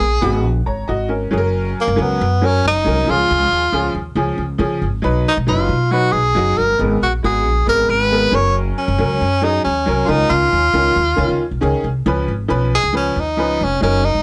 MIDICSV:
0, 0, Header, 1, 4, 480
1, 0, Start_track
1, 0, Tempo, 438276
1, 1688, Time_signature, 4, 2, 24, 8
1, 15579, End_track
2, 0, Start_track
2, 0, Title_t, "Tenor saxophone"
2, 0, Program_c, 0, 66
2, 0, Note_on_c, 0, 68, 100
2, 457, Note_off_c, 0, 68, 0
2, 1978, Note_on_c, 0, 58, 79
2, 2213, Note_on_c, 0, 59, 80
2, 2229, Note_off_c, 0, 58, 0
2, 2692, Note_on_c, 0, 61, 89
2, 2709, Note_off_c, 0, 59, 0
2, 2910, Note_off_c, 0, 61, 0
2, 2929, Note_on_c, 0, 63, 95
2, 3398, Note_on_c, 0, 65, 111
2, 3415, Note_off_c, 0, 63, 0
2, 4342, Note_off_c, 0, 65, 0
2, 5786, Note_on_c, 0, 63, 73
2, 5890, Note_off_c, 0, 63, 0
2, 6005, Note_on_c, 0, 65, 78
2, 6471, Note_on_c, 0, 66, 92
2, 6487, Note_off_c, 0, 65, 0
2, 6700, Note_on_c, 0, 68, 91
2, 6716, Note_off_c, 0, 66, 0
2, 7201, Note_on_c, 0, 70, 96
2, 7217, Note_off_c, 0, 68, 0
2, 7443, Note_off_c, 0, 70, 0
2, 7699, Note_on_c, 0, 66, 71
2, 7804, Note_off_c, 0, 66, 0
2, 7943, Note_on_c, 0, 68, 82
2, 8381, Note_off_c, 0, 68, 0
2, 8418, Note_on_c, 0, 70, 102
2, 8652, Note_on_c, 0, 71, 102
2, 8669, Note_off_c, 0, 70, 0
2, 9142, Note_on_c, 0, 73, 97
2, 9158, Note_off_c, 0, 71, 0
2, 9373, Note_off_c, 0, 73, 0
2, 9615, Note_on_c, 0, 61, 88
2, 10337, Note_on_c, 0, 63, 104
2, 10354, Note_off_c, 0, 61, 0
2, 10554, Note_off_c, 0, 63, 0
2, 10561, Note_on_c, 0, 61, 88
2, 11010, Note_on_c, 0, 65, 62
2, 11027, Note_off_c, 0, 61, 0
2, 11047, Note_on_c, 0, 63, 106
2, 11064, Note_off_c, 0, 65, 0
2, 11279, Note_on_c, 0, 65, 105
2, 11296, Note_off_c, 0, 63, 0
2, 12723, Note_off_c, 0, 65, 0
2, 13963, Note_on_c, 0, 68, 112
2, 14170, Note_off_c, 0, 68, 0
2, 14200, Note_on_c, 0, 61, 95
2, 14458, Note_on_c, 0, 63, 94
2, 14474, Note_off_c, 0, 61, 0
2, 14938, Note_on_c, 0, 61, 85
2, 14955, Note_off_c, 0, 63, 0
2, 15142, Note_off_c, 0, 61, 0
2, 15148, Note_on_c, 0, 61, 89
2, 15391, Note_on_c, 0, 63, 99
2, 15407, Note_off_c, 0, 61, 0
2, 15579, Note_off_c, 0, 63, 0
2, 15579, End_track
3, 0, Start_track
3, 0, Title_t, "Upright piano"
3, 0, Program_c, 1, 0
3, 227, Note_on_c, 1, 56, 76
3, 236, Note_on_c, 1, 59, 81
3, 242, Note_on_c, 1, 66, 95
3, 490, Note_off_c, 1, 56, 0
3, 494, Note_off_c, 1, 59, 0
3, 497, Note_off_c, 1, 66, 0
3, 725, Note_on_c, 1, 73, 48
3, 726, Note_on_c, 1, 82, 57
3, 954, Note_off_c, 1, 73, 0
3, 955, Note_off_c, 1, 82, 0
3, 960, Note_on_c, 1, 75, 73
3, 971, Note_on_c, 1, 66, 66
3, 1188, Note_on_c, 1, 70, 62
3, 1192, Note_off_c, 1, 75, 0
3, 1193, Note_on_c, 1, 61, 54
3, 1198, Note_off_c, 1, 66, 0
3, 1426, Note_off_c, 1, 61, 0
3, 1433, Note_on_c, 1, 54, 81
3, 1442, Note_on_c, 1, 61, 70
3, 1455, Note_on_c, 1, 68, 69
3, 1490, Note_off_c, 1, 70, 0
3, 1506, Note_on_c, 1, 70, 99
3, 1509, Note_off_c, 1, 68, 0
3, 2016, Note_off_c, 1, 54, 0
3, 2021, Note_off_c, 1, 61, 0
3, 2053, Note_off_c, 1, 70, 0
3, 2147, Note_on_c, 1, 54, 77
3, 2157, Note_on_c, 1, 61, 70
3, 2159, Note_on_c, 1, 70, 75
3, 2409, Note_off_c, 1, 54, 0
3, 2414, Note_off_c, 1, 61, 0
3, 2415, Note_off_c, 1, 70, 0
3, 2644, Note_on_c, 1, 54, 67
3, 2651, Note_on_c, 1, 61, 66
3, 2661, Note_on_c, 1, 70, 75
3, 2897, Note_off_c, 1, 54, 0
3, 2901, Note_off_c, 1, 61, 0
3, 2906, Note_off_c, 1, 70, 0
3, 3114, Note_on_c, 1, 54, 69
3, 3130, Note_on_c, 1, 61, 63
3, 3135, Note_on_c, 1, 70, 77
3, 3358, Note_off_c, 1, 61, 0
3, 3359, Note_on_c, 1, 53, 68
3, 3360, Note_off_c, 1, 54, 0
3, 3370, Note_off_c, 1, 70, 0
3, 3374, Note_on_c, 1, 61, 61
3, 3385, Note_on_c, 1, 68, 78
3, 3938, Note_off_c, 1, 53, 0
3, 3946, Note_off_c, 1, 61, 0
3, 3951, Note_off_c, 1, 68, 0
3, 4078, Note_on_c, 1, 53, 86
3, 4094, Note_on_c, 1, 61, 75
3, 4097, Note_on_c, 1, 68, 86
3, 4334, Note_off_c, 1, 53, 0
3, 4342, Note_off_c, 1, 61, 0
3, 4343, Note_off_c, 1, 68, 0
3, 4555, Note_on_c, 1, 53, 84
3, 4562, Note_on_c, 1, 61, 72
3, 4573, Note_on_c, 1, 68, 79
3, 4812, Note_off_c, 1, 53, 0
3, 4815, Note_off_c, 1, 61, 0
3, 4821, Note_off_c, 1, 68, 0
3, 5020, Note_on_c, 1, 53, 84
3, 5023, Note_on_c, 1, 61, 71
3, 5035, Note_on_c, 1, 68, 93
3, 5285, Note_off_c, 1, 53, 0
3, 5286, Note_off_c, 1, 61, 0
3, 5292, Note_off_c, 1, 68, 0
3, 5498, Note_on_c, 1, 54, 82
3, 5508, Note_on_c, 1, 63, 79
3, 5520, Note_on_c, 1, 71, 93
3, 5763, Note_off_c, 1, 54, 0
3, 5768, Note_off_c, 1, 63, 0
3, 5775, Note_off_c, 1, 71, 0
3, 5987, Note_on_c, 1, 54, 69
3, 5993, Note_on_c, 1, 63, 67
3, 6005, Note_on_c, 1, 71, 81
3, 6248, Note_off_c, 1, 54, 0
3, 6251, Note_off_c, 1, 63, 0
3, 6257, Note_off_c, 1, 71, 0
3, 6473, Note_on_c, 1, 54, 70
3, 6487, Note_on_c, 1, 63, 67
3, 6494, Note_on_c, 1, 71, 73
3, 6731, Note_off_c, 1, 54, 0
3, 6738, Note_off_c, 1, 63, 0
3, 6741, Note_off_c, 1, 71, 0
3, 6953, Note_on_c, 1, 54, 74
3, 6955, Note_on_c, 1, 63, 62
3, 6972, Note_on_c, 1, 66, 73
3, 7211, Note_off_c, 1, 54, 0
3, 7212, Note_off_c, 1, 63, 0
3, 7220, Note_off_c, 1, 66, 0
3, 7428, Note_on_c, 1, 56, 71
3, 7442, Note_on_c, 1, 59, 63
3, 7454, Note_on_c, 1, 70, 79
3, 7688, Note_off_c, 1, 56, 0
3, 7695, Note_off_c, 1, 59, 0
3, 7701, Note_off_c, 1, 70, 0
3, 7916, Note_on_c, 1, 56, 67
3, 7927, Note_on_c, 1, 59, 60
3, 7932, Note_on_c, 1, 66, 78
3, 8172, Note_off_c, 1, 56, 0
3, 8178, Note_off_c, 1, 59, 0
3, 8180, Note_off_c, 1, 66, 0
3, 8386, Note_on_c, 1, 56, 66
3, 8397, Note_on_c, 1, 59, 65
3, 8412, Note_on_c, 1, 70, 79
3, 8647, Note_off_c, 1, 56, 0
3, 8653, Note_off_c, 1, 59, 0
3, 8660, Note_off_c, 1, 70, 0
3, 8880, Note_on_c, 1, 56, 69
3, 8894, Note_on_c, 1, 59, 68
3, 8898, Note_on_c, 1, 70, 84
3, 9107, Note_on_c, 1, 54, 70
3, 9112, Note_off_c, 1, 70, 0
3, 9118, Note_on_c, 1, 61, 69
3, 9122, Note_off_c, 1, 56, 0
3, 9128, Note_on_c, 1, 70, 75
3, 9129, Note_off_c, 1, 59, 0
3, 9692, Note_off_c, 1, 54, 0
3, 9697, Note_off_c, 1, 61, 0
3, 9702, Note_off_c, 1, 70, 0
3, 9839, Note_on_c, 1, 54, 74
3, 9850, Note_on_c, 1, 61, 67
3, 9854, Note_on_c, 1, 70, 74
3, 10093, Note_off_c, 1, 54, 0
3, 10099, Note_off_c, 1, 61, 0
3, 10101, Note_off_c, 1, 70, 0
3, 10313, Note_on_c, 1, 54, 71
3, 10323, Note_on_c, 1, 61, 67
3, 10333, Note_on_c, 1, 68, 77
3, 10570, Note_off_c, 1, 54, 0
3, 10576, Note_off_c, 1, 61, 0
3, 10581, Note_off_c, 1, 68, 0
3, 10798, Note_on_c, 1, 54, 76
3, 10812, Note_on_c, 1, 61, 66
3, 10820, Note_on_c, 1, 70, 83
3, 11031, Note_off_c, 1, 61, 0
3, 11039, Note_on_c, 1, 51, 79
3, 11041, Note_off_c, 1, 54, 0
3, 11047, Note_on_c, 1, 61, 69
3, 11052, Note_off_c, 1, 70, 0
3, 11057, Note_on_c, 1, 65, 74
3, 11618, Note_off_c, 1, 51, 0
3, 11622, Note_off_c, 1, 61, 0
3, 11627, Note_off_c, 1, 65, 0
3, 11752, Note_on_c, 1, 51, 74
3, 11766, Note_on_c, 1, 61, 67
3, 11772, Note_on_c, 1, 65, 84
3, 12011, Note_off_c, 1, 51, 0
3, 12018, Note_off_c, 1, 61, 0
3, 12021, Note_off_c, 1, 65, 0
3, 12219, Note_on_c, 1, 51, 80
3, 12229, Note_on_c, 1, 61, 75
3, 12238, Note_on_c, 1, 65, 88
3, 12485, Note_off_c, 1, 51, 0
3, 12489, Note_off_c, 1, 61, 0
3, 12494, Note_off_c, 1, 65, 0
3, 12712, Note_on_c, 1, 51, 88
3, 12718, Note_on_c, 1, 61, 83
3, 12724, Note_on_c, 1, 68, 98
3, 12971, Note_off_c, 1, 51, 0
3, 12974, Note_off_c, 1, 61, 0
3, 12978, Note_off_c, 1, 68, 0
3, 13207, Note_on_c, 1, 53, 78
3, 13214, Note_on_c, 1, 61, 79
3, 13225, Note_on_c, 1, 71, 93
3, 13459, Note_off_c, 1, 53, 0
3, 13463, Note_off_c, 1, 61, 0
3, 13468, Note_off_c, 1, 71, 0
3, 13672, Note_on_c, 1, 53, 78
3, 13673, Note_on_c, 1, 61, 76
3, 13689, Note_on_c, 1, 71, 92
3, 13932, Note_off_c, 1, 53, 0
3, 13933, Note_off_c, 1, 61, 0
3, 13941, Note_off_c, 1, 71, 0
3, 14160, Note_on_c, 1, 53, 67
3, 14168, Note_on_c, 1, 61, 65
3, 14175, Note_on_c, 1, 71, 73
3, 14417, Note_off_c, 1, 53, 0
3, 14421, Note_off_c, 1, 61, 0
3, 14424, Note_off_c, 1, 71, 0
3, 14643, Note_on_c, 1, 53, 67
3, 14652, Note_on_c, 1, 61, 68
3, 14667, Note_on_c, 1, 71, 80
3, 14899, Note_off_c, 1, 53, 0
3, 14903, Note_off_c, 1, 61, 0
3, 14911, Note_off_c, 1, 71, 0
3, 15120, Note_on_c, 1, 54, 72
3, 15127, Note_on_c, 1, 63, 64
3, 15147, Note_on_c, 1, 70, 85
3, 15378, Note_off_c, 1, 54, 0
3, 15381, Note_off_c, 1, 63, 0
3, 15392, Note_off_c, 1, 70, 0
3, 15579, End_track
4, 0, Start_track
4, 0, Title_t, "Upright bass"
4, 0, Program_c, 2, 32
4, 1, Note_on_c, 2, 34, 87
4, 214, Note_off_c, 2, 34, 0
4, 248, Note_on_c, 2, 32, 97
4, 487, Note_off_c, 2, 32, 0
4, 487, Note_on_c, 2, 34, 86
4, 697, Note_off_c, 2, 34, 0
4, 734, Note_on_c, 2, 32, 80
4, 941, Note_off_c, 2, 32, 0
4, 976, Note_on_c, 2, 32, 85
4, 1391, Note_off_c, 2, 32, 0
4, 1458, Note_on_c, 2, 30, 89
4, 1872, Note_off_c, 2, 30, 0
4, 2054, Note_on_c, 2, 30, 97
4, 2156, Note_off_c, 2, 30, 0
4, 2172, Note_on_c, 2, 37, 94
4, 2379, Note_off_c, 2, 37, 0
4, 2421, Note_on_c, 2, 42, 102
4, 2834, Note_off_c, 2, 42, 0
4, 2903, Note_on_c, 2, 30, 84
4, 3105, Note_off_c, 2, 30, 0
4, 3143, Note_on_c, 2, 36, 92
4, 3345, Note_off_c, 2, 36, 0
4, 3384, Note_on_c, 2, 37, 93
4, 3586, Note_off_c, 2, 37, 0
4, 3623, Note_on_c, 2, 37, 102
4, 3825, Note_off_c, 2, 37, 0
4, 3851, Note_on_c, 2, 39, 78
4, 4058, Note_off_c, 2, 39, 0
4, 4085, Note_on_c, 2, 37, 90
4, 4294, Note_off_c, 2, 37, 0
4, 4322, Note_on_c, 2, 39, 81
4, 4533, Note_off_c, 2, 39, 0
4, 4549, Note_on_c, 2, 37, 92
4, 4766, Note_off_c, 2, 37, 0
4, 4794, Note_on_c, 2, 37, 87
4, 5008, Note_off_c, 2, 37, 0
4, 5028, Note_on_c, 2, 49, 98
4, 5275, Note_on_c, 2, 32, 84
4, 5291, Note_off_c, 2, 49, 0
4, 5488, Note_off_c, 2, 32, 0
4, 5520, Note_on_c, 2, 35, 91
4, 5732, Note_off_c, 2, 35, 0
4, 5884, Note_on_c, 2, 35, 98
4, 5989, Note_off_c, 2, 35, 0
4, 5998, Note_on_c, 2, 30, 100
4, 6210, Note_off_c, 2, 30, 0
4, 6232, Note_on_c, 2, 47, 93
4, 6656, Note_off_c, 2, 47, 0
4, 6711, Note_on_c, 2, 35, 87
4, 6926, Note_off_c, 2, 35, 0
4, 6953, Note_on_c, 2, 30, 84
4, 7167, Note_off_c, 2, 30, 0
4, 7201, Note_on_c, 2, 31, 78
4, 7412, Note_off_c, 2, 31, 0
4, 7439, Note_on_c, 2, 32, 92
4, 7651, Note_off_c, 2, 32, 0
4, 7688, Note_on_c, 2, 34, 73
4, 7896, Note_off_c, 2, 34, 0
4, 7933, Note_on_c, 2, 32, 102
4, 8169, Note_off_c, 2, 32, 0
4, 8169, Note_on_c, 2, 34, 92
4, 8376, Note_off_c, 2, 34, 0
4, 8402, Note_on_c, 2, 32, 99
4, 8612, Note_off_c, 2, 32, 0
4, 8640, Note_on_c, 2, 32, 88
4, 9061, Note_off_c, 2, 32, 0
4, 9115, Note_on_c, 2, 30, 89
4, 9538, Note_off_c, 2, 30, 0
4, 9725, Note_on_c, 2, 30, 103
4, 9840, Note_on_c, 2, 37, 100
4, 9856, Note_off_c, 2, 30, 0
4, 10051, Note_off_c, 2, 37, 0
4, 10088, Note_on_c, 2, 42, 96
4, 10505, Note_off_c, 2, 42, 0
4, 10578, Note_on_c, 2, 39, 79
4, 10781, Note_off_c, 2, 39, 0
4, 10818, Note_on_c, 2, 36, 83
4, 11022, Note_off_c, 2, 36, 0
4, 11047, Note_on_c, 2, 37, 99
4, 11255, Note_off_c, 2, 37, 0
4, 11282, Note_on_c, 2, 37, 107
4, 11493, Note_off_c, 2, 37, 0
4, 11529, Note_on_c, 2, 39, 82
4, 11737, Note_off_c, 2, 39, 0
4, 11757, Note_on_c, 2, 37, 95
4, 11970, Note_off_c, 2, 37, 0
4, 12005, Note_on_c, 2, 39, 84
4, 12215, Note_off_c, 2, 39, 0
4, 12245, Note_on_c, 2, 37, 95
4, 12350, Note_off_c, 2, 37, 0
4, 12360, Note_on_c, 2, 37, 93
4, 12467, Note_off_c, 2, 37, 0
4, 12609, Note_on_c, 2, 35, 74
4, 12713, Note_off_c, 2, 35, 0
4, 12732, Note_on_c, 2, 37, 94
4, 12834, Note_off_c, 2, 37, 0
4, 12967, Note_on_c, 2, 36, 85
4, 13176, Note_off_c, 2, 36, 0
4, 13206, Note_on_c, 2, 37, 105
4, 13416, Note_off_c, 2, 37, 0
4, 13451, Note_on_c, 2, 32, 84
4, 13659, Note_off_c, 2, 32, 0
4, 13693, Note_on_c, 2, 35, 103
4, 14005, Note_off_c, 2, 35, 0
4, 14056, Note_on_c, 2, 37, 80
4, 14367, Note_off_c, 2, 37, 0
4, 14414, Note_on_c, 2, 39, 82
4, 14655, Note_off_c, 2, 39, 0
4, 14655, Note_on_c, 2, 37, 96
4, 14862, Note_off_c, 2, 37, 0
4, 14906, Note_on_c, 2, 29, 84
4, 15109, Note_off_c, 2, 29, 0
4, 15139, Note_on_c, 2, 30, 98
4, 15450, Note_off_c, 2, 30, 0
4, 15496, Note_on_c, 2, 32, 87
4, 15579, Note_off_c, 2, 32, 0
4, 15579, End_track
0, 0, End_of_file